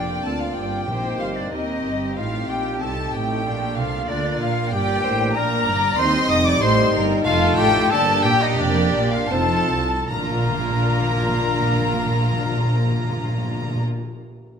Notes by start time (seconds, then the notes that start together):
Already playing: F1 F2 A#2 A#3 D4 F4 G4 D5 G5
0.24 D2 C4 F4 A4 A5
0.40 F4 F5
0.56 G1 G2 G4 G5
0.88 A#1 A#2 A#3 C4 D#4 G4 C5
1.20 G1 G2 F4 F5
1.36 D4 D5
1.52 D#2 C4 D#4 G4 A#4 D#5
1.85 G1 G2 G4
2.16 A1 A2 C4 F4 F5
2.48 A#1 A#2 G4 G5
2.80 C2 C3 A3 C4 A4 A5
3.12 A1 A2 G4 G5
3.44 A#1 A#2 A#3 D4 F4
3.76 C2 C3 F4 A4 F5
4.07 D2 D3 A#3 D4 F4 A#4 D5
4.39 A#1 A#2 F4 F5
4.70 G1 G2 A#3 D4 G4 D5 G5
5.03 A1 A2 C5
5.33 A#1 A#2 D4 A#4 A#5
5.66 G1 G2 D5
5.97 D#2 G3 C4 D#4 C5 D#5 C6
6.28 F1 F2 D#5 D#6
6.45 D5 D6
6.60 A1 A2 G3 D#4 C5 C6
6.92 G1 G2 A#4
7.24 F1 F2 A3 F4 A4 F5
7.57 A1 A2 G4 G5
7.89 G1 G2 A#3 D4 G4 A4 A5
7.93 A#3
8.23 A#1 A#2 G4 G5
8.41 D#4 D#5
8.57 F1 F2 A#3 D4 D5
8.95 A#1 A#2
9.12 F4 F5
9.29 F1 F2 C4 D#4 F4 A4 C5 A5
9.70 C2
10.08 A#1 A#2 A#3 D4 F4 A#4 A#5
10.18 A#2
10.24 A#2
10.31 A#2
10.37 A#2
10.44 A#2
10.51 A#2
10.57 A#2
10.64 A#2
10.70 A#2
10.77 A#2
10.84 A#2
10.90 A#2
10.96 A#2
11.03 A#2
11.09 A#2
11.16 A#2
11.22 A#2
11.29 A#2
11.35 A#2
11.42 A#2
11.48 A#2
11.54 A#2
11.61 A#2
11.67 A#2
11.74 A#2
11.80 A#2
11.87 A#2
11.93 A#2
12.00 A#2
12.06 A#2
12.12 A#2
12.19 A#2
12.26 A#2
12.32 A#2
12.38 A#2
12.45 A#2
12.52 A#2
12.59 A#2
12.65 A#2
12.72 A#2
12.78 A#2
12.85 A#2
12.92 A#2
12.98 A#2
13.04 A#2
13.10 A#2
13.17 A#2
13.24 A#2
13.30 A#2
13.37 A#2
13.43 A#2
13.49 A#2
13.55 A#2
13.62 A#2
13.68 A#2
13.74 A#2